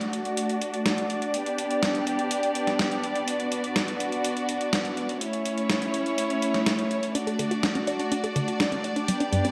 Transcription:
0.00 1.32 A3 medium
0.00 5.17 D4 medium
0.00 1.32 F#4 medium
0.00 5.17 D5 medium
0.00 closed hi-hat soft
0.13 closed hi-hat medium
0.25 closed hi-hat soft
0.37 closed hi-hat medium
0.49 closed hi-hat soft
0.61 closed hi-hat medium
0.74 closed hi-hat soft
0.86 snare loud
0.86 closed hi-hat medium
0.98 closed hi-hat soft
1.10 closed hi-hat soft
1.22 closed hi-hat soft
1.34 5.18 B3 medium
1.34 3.26 G4 medium
1.34 closed hi-hat medium
1.46 closed hi-hat soft
1.58 closed hi-hat medium
1.71 closed hi-hat soft
1.83 snare loud
1.83 closed hi-hat medium
1.95 closed hi-hat soft
2.07 closed hi-hat medium
2.19 closed hi-hat soft
2.31 closed hi-hat medium
2.43 closed hi-hat soft
2.55 closed hi-hat medium
2.67 snare soft
2.67 closed hi-hat soft
2.79 snare loud
2.79 closed hi-hat medium
2.91 closed hi-hat soft
3.04 closed hi-hat soft
3.15 closed hi-hat soft
3.28 5.19 F#4 medium
3.28 closed hi-hat medium
3.40 closed hi-hat soft
3.52 closed hi-hat medium
3.64 closed hi-hat soft
3.76 snare loud
3.76 closed hi-hat medium
3.88 closed hi-hat soft
4.00 closed hi-hat medium
4.12 closed hi-hat soft
4.24 closed hi-hat medium
4.37 closed hi-hat soft
4.49 closed hi-hat medium
4.61 closed hi-hat soft
4.73 snare loud
4.73 closed hi-hat medium
4.85 closed hi-hat soft
4.97 closed hi-hat soft
5.09 closed hi-hat soft
5.21 9.05 A3 medium
5.21 7.13 C#4 medium
5.21 7.13 E4 medium
5.21 7.13 C#5 medium
5.21 closed hi-hat medium
5.33 closed hi-hat soft
5.45 closed hi-hat medium
5.58 closed hi-hat soft
5.70 snare loud
5.70 closed hi-hat medium
5.82 closed hi-hat soft
5.94 closed hi-hat medium
6.06 closed hi-hat soft
6.18 closed hi-hat medium
6.30 closed hi-hat soft
6.42 closed hi-hat medium
6.54 snare soft
6.54 closed hi-hat soft
6.66 snare loud
6.66 closed hi-hat medium
6.79 closed hi-hat soft
6.91 closed hi-hat soft
7.03 closed hi-hat soft
7.15 9.51 D4 medium
7.15 7.23 D4 medium
7.15 9.06 F#4 medium
7.15 9.51 D5 medium
7.15 closed hi-hat medium
7.27 7.38 A4 medium
7.27 closed hi-hat soft
7.39 7.51 D3 loud
7.39 closed hi-hat medium
7.51 7.56 F#4 medium
7.51 closed hi-hat soft
7.63 7.72 D4 loud
7.63 snare loud
7.63 closed hi-hat medium
7.75 7.87 C#4 medium
7.75 closed hi-hat soft
7.87 7.92 D5 medium
7.87 closed hi-hat medium
8.00 8.05 D4 medium
8.00 closed hi-hat soft
8.12 8.20 D4 medium
8.12 closed hi-hat medium
8.24 8.35 A4 medium
8.24 closed hi-hat soft
8.36 8.47 D3 medium
8.36 closed hi-hat medium
8.48 8.53 F#4 medium
8.48 closed hi-hat soft
8.60 8.68 D4 loud
8.60 snare loud
8.60 closed hi-hat medium
8.72 8.84 C#4 medium
8.72 closed hi-hat soft
8.84 8.89 D5 medium
8.84 closed hi-hat soft
8.96 9.01 D4 medium
8.96 closed hi-hat soft
9.08 9.17 G3 medium
9.08 9.51 B3 medium
9.08 9.51 G4 medium
9.08 closed hi-hat medium
9.20 9.32 D4 medium
9.20 closed hi-hat soft
9.32 9.44 G2 loud
9.32 closed hi-hat medium
9.45 9.50 C#4 medium
9.45 closed hi-hat soft

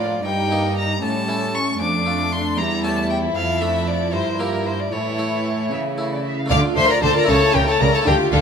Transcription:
0.00 0.21 A2 soft
0.00 0.24 A2 soft
0.00 0.24 F3 soft
0.00 0.11 A#3 soft
0.00 0.11 D4 soft
0.00 0.12 F4 soft
0.00 0.25 F4 soft
0.00 0.24 D5 medium
0.25 0.98 G2 soft
0.25 1.01 G2 medium
0.25 1.77 G3 medium
0.25 1.01 D#4 soft
0.25 1.01 A#4 soft
0.25 0.76 G5 medium
0.51 0.88 A#3 soft
0.51 0.89 D#4 soft
0.51 0.89 G4 soft
0.77 1.02 A#5 medium
1.02 1.78 A2 medium
1.02 1.76 A2 soft
1.02 1.78 C#4 soft
1.02 1.78 A4 soft
1.02 1.56 A5 medium
1.28 1.65 A3 soft
1.28 1.66 C#4 soft
1.28 1.66 E4 soft
1.54 1.80 C#6 medium
1.80 2.53 F2 soft
1.80 2.56 F2 medium
1.80 2.56 A3 soft
1.80 2.58 D4 medium
1.80 3.33 A4 soft
1.80 2.33 D6 medium
2.06 2.43 A3 soft
2.06 2.43 D4 soft
2.06 2.44 F4 soft
2.32 2.59 C6 medium
2.57 3.31 E2 soft
2.57 3.35 E2 soft
2.57 3.35 G3 medium
2.57 4.92 E4 medium
2.57 2.83 A#5 medium
2.84 3.21 A3 soft
2.84 3.21 C#4 soft
2.84 3.22 G4 soft
2.84 3.09 A5 medium
3.09 3.17 G5 medium
3.35 4.12 F2 medium
3.35 4.09 F2 soft
3.35 4.89 F3 medium
3.35 4.12 A4 soft
3.35 3.62 F5 medium
3.61 3.99 A3 soft
3.61 3.99 D4 soft
3.61 3.99 A4 soft
3.61 3.89 E5 medium
3.87 4.15 D5 medium
4.13 4.88 G2 soft
4.13 4.92 G2 soft
4.13 4.92 A#4 soft
4.13 4.41 C5 medium
4.39 4.78 A#3 soft
4.39 4.78 E4 soft
4.39 4.78 G4 soft
4.39 4.67 A#4 medium
4.66 4.81 C5 medium
4.80 4.94 D5 medium
4.92 5.67 A2 soft
4.92 5.70 A2 medium
4.92 6.31 E3 soft
4.92 6.28 E4 medium
4.92 5.65 A4 soft
4.92 5.71 C#5 medium
5.19 5.76 A3 soft
5.19 5.76 E4 soft
5.71 6.51 C#3 soft
5.71 6.47 C#3 soft
5.71 5.80 E5 medium
5.98 6.36 A3 soft
5.98 6.36 E4 soft
5.98 6.11 C#5 soft
6.11 6.24 D5 soft
6.26 6.38 E5 soft
6.39 6.51 F5 soft
6.46 7.23 A3 medium
6.46 7.25 D4 medium
6.46 7.25 F4 medium
6.50 6.59 D2 medium
6.50 6.58 D3 medium
6.50 6.74 D3 medium
6.50 6.63 D4 medium
6.50 6.58 D5 medium
6.50 6.59 F5 medium
6.50 6.60 D6 loud
6.64 6.77 F4 medium
6.76 6.85 D2 medium
6.76 7.00 D3 medium
6.76 6.84 D3 medium
6.76 6.90 D4 medium
6.76 6.90 C5 medium
6.76 6.90 E5 medium
6.76 6.90 C6 medium
6.89 7.03 F4 medium
6.89 7.02 A#4 medium
6.89 7.02 D5 medium
6.89 7.03 A#5 medium
7.02 7.11 D2 medium
7.02 7.10 D3 medium
7.02 7.26 D3 medium
7.02 7.15 D4 medium
7.02 7.15 A4 medium
7.02 7.15 C5 medium
7.02 7.16 A5 medium
7.15 7.29 F4 medium
7.15 7.28 A#4 medium
7.15 7.30 D5 medium
7.15 7.29 A#5 medium
7.24 8.00 A3 medium
7.24 8.02 E4 medium
7.28 7.37 C#2 medium
7.28 7.36 C#3 medium
7.28 7.52 C#3 medium
7.28 7.41 C#4 medium
7.28 7.55 A4 medium
7.28 7.56 C#5 medium
7.28 7.55 A5 medium
7.42 7.55 E4 medium
7.54 7.63 C#2 medium
7.54 7.62 C#3 medium
7.54 7.78 C#3 medium
7.54 7.68 C#4 medium
7.54 7.68 G4 medium
7.54 7.69 A#4 medium
7.54 7.68 G5 medium
7.67 7.81 E4 medium
7.67 7.80 A4 medium
7.67 7.81 C#5 medium
7.67 7.81 A5 medium
7.80 7.89 C#2 medium
7.80 8.03 C#3 medium
7.80 7.88 C#3 medium
7.80 7.93 C#4 medium
7.80 7.93 A#4 medium
7.80 7.93 D5 medium
7.80 7.94 A#5 medium
7.94 8.06 E4 medium
7.94 8.07 A4 medium
7.94 7.99 C#5 medium
7.94 8.07 A5 medium
8.01 8.41 A3 medium
8.01 8.41 D4 medium
8.01 8.41 F4 medium
8.06 8.14 D2 medium
8.06 8.29 D3 medium
8.06 8.14 D3 medium
8.06 8.19 D4 medium
8.06 8.33 G4 medium
8.06 8.14 A#4 medium
8.06 8.15 G5 medium
8.19 8.32 F4 medium
8.32 8.40 D2 medium
8.32 8.40 D3 medium
8.32 8.41 D3 medium
8.32 8.41 D4 medium
8.32 8.41 F4 medium
8.32 8.41 A4 medium
8.32 8.37 F5 medium

